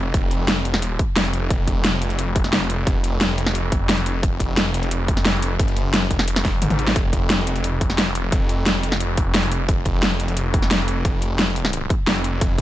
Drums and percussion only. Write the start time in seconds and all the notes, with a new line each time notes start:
0.14 kick, closed hi-hat
0.31 closed hi-hat
0.48 snare, closed hi-hat
0.65 closed hi-hat
0.74 snare, closed hi-hat
0.82 closed hi-hat
0.99 kick, closed hi-hat
1.16 snare, closed hi-hat
1.25 closed hi-hat
1.33 closed hi-hat
1.50 kick, closed hi-hat
1.68 kick, closed hi-hat
1.85 snare, closed hi-hat
2.02 closed hi-hat
2.10 closed hi-hat
2.19 closed hi-hat
2.36 kick, closed hi-hat
2.44 snare
2.53 snare, closed hi-hat
2.70 closed hi-hat
2.87 kick, closed hi-hat
3.04 closed hi-hat
3.21 snare, closed hi-hat
3.38 closed hi-hat
3.46 snare, closed hi-hat
3.55 closed hi-hat
3.72 kick, closed hi-hat
3.89 snare, closed hi-hat
3.98 closed hi-hat
4.06 closed hi-hat
4.23 kick, closed hi-hat
4.40 kick, closed hi-hat
4.57 snare, closed hi-hat
4.74 closed hi-hat
4.83 closed hi-hat
4.91 closed hi-hat
5.08 kick, closed hi-hat
5.17 snare
5.25 snare, closed hi-hat
5.42 closed hi-hat
5.60 kick, closed hi-hat
5.68 closed hi-hat
5.77 closed hi-hat
5.94 snare, closed hi-hat
6.11 kick, closed hi-hat
6.19 snare, closed hi-hat
6.28 closed hi-hat
6.36 snare
6.45 kick, snare, closed hi-hat
6.62 closed hi-hat, mid tom
6.70 closed hi-hat, mid tom
6.79 closed hi-hat
6.87 snare, closed hi-hat
6.96 kick, closed hi-hat
7.13 kick, closed hi-hat
7.30 snare, closed hi-hat
7.47 closed hi-hat
7.56 closed hi-hat
7.64 closed hi-hat
7.81 kick, closed hi-hat
7.90 snare
7.98 snare, closed hi-hat
8.15 closed hi-hat
8.32 kick, closed hi-hat
8.49 closed hi-hat
8.66 snare, closed hi-hat
8.83 closed hi-hat
8.92 snare, closed hi-hat
9.00 closed hi-hat
9.17 kick, closed hi-hat
9.35 snare, closed hi-hat
9.43 closed hi-hat
9.52 closed hi-hat
9.69 kick, closed hi-hat
9.86 kick, closed hi-hat
10.03 snare, closed hi-hat
10.20 closed hi-hat
10.28 closed hi-hat
10.37 closed hi-hat
10.54 kick, closed hi-hat
10.62 snare
10.71 snare, closed hi-hat
10.88 closed hi-hat
11.05 kick, closed hi-hat
11.22 closed hi-hat
11.39 snare, closed hi-hat
11.56 closed hi-hat
11.65 snare, closed hi-hat
11.73 closed hi-hat
11.90 kick, closed hi-hat
12.07 snare, closed hi-hat
12.16 closed hi-hat
12.24 closed hi-hat
12.41 kick, closed hi-hat